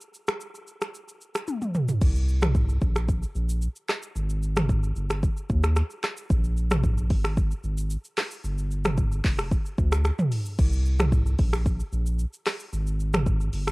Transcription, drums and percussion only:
0.01 shaker medium
0.14 shaker soft
0.28 finger snap medium
0.28 cross-stick loud
0.28 shaker medium
0.41 shaker medium
0.55 shaker medium
0.67 shaker soft
0.82 finger snap medium
0.82 cross-stick medium
0.82 shaker medium
0.95 shaker medium
1.09 shaker medium
1.21 shaker soft
1.35 finger snap medium
1.35 cross-stick medium
1.35 shaker loud
1.48 high tom medium
1.48 shaker medium
1.62 mid tom medium
1.62 shaker soft
1.75 mid tom medium
1.75 shaker medium
1.88 floor tom medium
1.88 shaker medium
2.02 kick loud
2.02 crash medium
2.02 shaker medium
2.15 shaker medium
2.28 shaker medium
2.42 finger snap loud
2.42 cross-stick loud
2.42 mid tom loud
2.42 shaker medium
2.55 kick medium
2.55 shaker medium
2.69 shaker medium
2.81 kick medium
2.81 shaker soft
2.96 finger snap medium
2.96 cross-stick medium
2.96 shaker medium
3.09 kick medium
3.09 shaker medium
3.23 shaker medium
3.35 shaker soft
3.49 shaker loud
3.62 shaker medium
3.76 shaker soft
3.89 finger snap medium
3.89 cross-stick loud
3.89 clap medium
3.89 shaker medium
4.03 shaker medium
4.16 shaker medium
4.30 shaker medium
4.43 shaker medium
4.56 finger snap medium
4.56 cross-stick loud
4.56 mid tom loud
4.56 shaker medium
4.69 kick medium
4.69 shaker medium
4.83 shaker medium
4.96 shaker soft
5.10 finger snap medium
5.10 cross-stick medium
5.10 shaker medium
5.23 kick medium
5.23 shaker medium
5.37 shaker medium
5.50 kick medium
5.50 shaker soft
5.63 finger snap medium
5.63 cross-stick loud
5.63 shaker loud
5.76 finger snap medium
5.76 cross-stick medium
5.76 shaker medium
5.90 shaker soft
6.03 finger snap medium
6.03 cross-stick medium
6.03 clap loud
6.03 shaker medium
6.17 shaker medium
6.30 kick loud
6.30 shaker medium
6.44 shaker medium
6.57 shaker medium
6.71 finger snap medium
6.71 cross-stick loud
6.71 mid tom loud
6.71 shaker medium
6.83 kick medium
6.83 shaker medium
6.98 shaker medium
7.10 kick medium
7.10 open hi-hat medium
7.10 shaker soft
7.24 finger snap medium
7.24 cross-stick medium
7.24 shaker medium
7.37 kick medium
7.37 shaker medium
7.51 shaker medium
7.64 shaker soft
7.78 shaker loud
7.90 shaker medium
8.05 shaker soft
8.17 finger snap medium
8.17 cross-stick loud
8.17 clap medium
8.17 open hi-hat medium
8.17 shaker medium
8.31 shaker medium
8.44 shaker medium
8.58 shaker medium
8.71 shaker medium
8.85 finger snap medium
8.85 cross-stick loud
8.85 mid tom loud
8.85 shaker medium
8.98 kick medium
8.98 shaker medium
9.12 shaker medium
9.24 kick loud
9.24 clap medium
9.24 open hi-hat medium
9.24 shaker soft
9.39 finger snap medium
9.39 cross-stick medium
9.39 shaker medium
9.52 kick medium
9.52 shaker medium
9.66 shaker medium
9.78 kick medium
9.78 shaker soft
9.92 finger snap medium
9.92 cross-stick loud
9.92 shaker loud
10.05 finger snap medium
10.05 cross-stick medium
10.05 shaker medium
10.19 mid tom loud
10.19 shaker soft
10.32 open hi-hat medium
10.32 shaker medium
10.46 shaker medium
10.59 kick loud
10.59 crash loud
10.59 shaker medium
10.73 shaker medium
10.86 shaker medium
10.99 finger snap medium
10.99 cross-stick loud
10.99 mid tom loud
10.99 shaker medium
11.12 kick medium
11.12 shaker medium
11.26 shaker medium
11.39 kick medium
11.39 open hi-hat medium
11.39 shaker soft
11.53 finger snap medium
11.53 cross-stick medium
11.53 shaker medium
11.66 kick medium
11.66 shaker medium
11.80 shaker medium
11.93 shaker soft
12.06 shaker loud
12.19 shaker medium
12.33 shaker soft
12.46 finger snap medium
12.46 cross-stick loud
12.46 clap loud
12.46 open hi-hat medium
12.46 shaker medium
12.60 shaker medium
12.73 shaker medium
12.87 shaker medium
13.00 shaker medium
13.14 finger snap loud
13.14 cross-stick loud
13.14 mid tom loud
13.14 shaker medium
13.26 kick medium
13.26 shaker medium
13.41 shaker medium
13.53 open hi-hat medium
13.53 shaker soft
13.67 finger snap medium
13.67 cross-stick medium
13.67 shaker medium

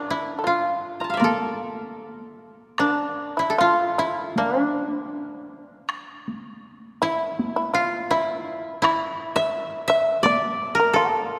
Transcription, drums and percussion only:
1.22 taiko high medium
2.78 taiko rim medium
4.36 taiko high medium
5.89 taiko rim soft
6.28 taiko high soft
7.39 taiko high medium
8.85 taiko rim medium
10.26 taiko high medium

